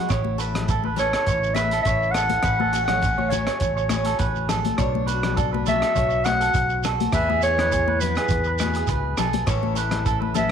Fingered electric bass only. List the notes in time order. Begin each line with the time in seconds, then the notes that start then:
0.10 A1
1.27 A1
1.85 A1
2.44 A1
3.61 A1
4.19 A1
4.79 B1
5.96 B1
6.55 B1
7.13 E2
8.31 E2
8.88 C#2
9.18 B1
9.47 A1